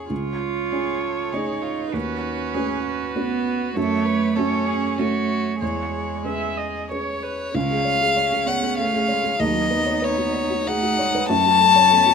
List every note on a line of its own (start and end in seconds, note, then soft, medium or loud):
0.00 0.12 E2 soft
0.00 0.13 C#4 soft
0.00 0.10 G#4 soft
0.00 0.13 G#4 soft
0.00 0.13 C#5 soft
0.09 0.70 C#2 soft
0.09 1.34 F4 medium
0.09 1.90 C#5 soft
0.72 1.29 C#4 soft
0.72 1.29 F4 soft
0.72 1.02 G#4 medium
0.72 1.30 C#5 soft
1.00 1.33 A4 soft
1.32 1.90 C#4 soft
1.32 1.95 D#4 medium
1.32 1.64 G#4 medium
1.32 1.90 G#4 soft
1.32 1.91 C#5 soft
1.62 1.93 F4 soft
1.93 2.52 D#2 soft
1.93 3.17 C#4 medium
1.93 2.55 F#4 medium
1.93 3.72 B4 medium
2.54 3.11 C#4 soft
2.54 3.12 F#4 soft
2.54 2.83 G#4 medium
2.54 3.12 B4 soft
2.84 3.77 F#4 medium
3.15 3.75 B3 medium
3.15 3.72 C#4 soft
3.15 3.72 F#4 soft
3.15 3.73 B4 medium
3.76 4.35 F#2 medium
3.76 4.38 A3 medium
3.76 4.07 A4 medium
3.76 4.33 C#5 medium
4.05 4.37 B4 medium
4.36 4.95 A3 medium
4.36 5.00 C#4 medium
4.36 4.95 C#4 soft
4.36 4.95 F#4 soft
4.36 4.68 A4 medium
4.36 4.97 C#5 medium
4.66 5.00 G#4 medium
4.98 5.62 A3 medium
4.98 5.57 C#4 soft
4.98 5.60 F#4 medium
4.98 5.58 F#4 soft
4.98 5.58 A4 soft
4.98 5.60 C#5 medium
5.60 6.23 E2 soft
5.60 7.23 G#3 medium
5.60 6.88 G#4 medium
5.60 6.17 C#5 soft
6.25 6.87 C#4 soft
6.25 6.87 G#4 soft
6.25 6.87 B4 soft
6.25 6.59 E5 medium
6.57 6.91 D#5 medium
6.91 7.51 C#4 soft
6.91 7.51 G#4 soft
6.91 7.51 B4 soft
6.91 7.25 C#5 soft
6.91 7.56 C#5 medium
7.23 7.55 B4 soft
7.54 9.37 C#2 medium
7.54 7.84 G#3 medium
7.54 8.13 C#4 medium
7.54 8.49 F5 loud
7.70 7.95 G#4 soft
7.85 8.18 G#3 medium
7.85 8.10 C#5 soft
8.01 8.26 G#4 medium
8.16 8.49 C#4 medium
8.16 9.39 C#4 medium
8.16 8.42 C#5 medium
8.33 8.57 G#4 medium
8.47 8.80 B3 medium
8.47 8.72 C#5 soft
8.47 8.77 F#5 medium
8.62 8.88 G#4 medium
8.78 9.12 A3 medium
8.78 8.95 A4 soft
8.78 9.42 F5 medium
8.94 9.19 G#4 medium
9.08 9.40 G#3 medium
9.08 9.34 C#5 medium
9.24 9.40 G#4 medium
9.40 11.25 D#2 medium
9.40 9.73 F#3 medium
9.40 10.65 D#4 medium
9.40 10.05 D#5 medium
9.54 9.81 F#4 soft
9.70 10.67 B3 medium
9.70 9.96 B4 medium
9.86 10.12 C#5 medium
10.02 10.28 B4 medium
10.02 10.68 C#5 medium
10.18 10.44 F#4 medium
10.34 10.60 C#5 medium
10.50 10.76 F#4 medium
10.67 11.00 A3 medium
10.67 11.31 D#4 medium
10.67 10.83 G#4 soft
10.67 11.28 F#5 loud
10.82 11.08 F#4 medium
10.99 11.31 G#3 medium
10.99 11.24 C#5 medium
11.15 11.30 B4 medium
11.29 12.14 F#2 medium
11.29 11.93 F#3 medium
11.29 12.14 C#4 medium
11.29 12.14 A5 loud
11.46 11.70 F#4 medium
11.60 11.85 A4 medium
11.76 12.00 C#5 medium
11.91 12.14 B3 medium
11.91 12.14 A4 medium
12.06 12.14 F#4 medium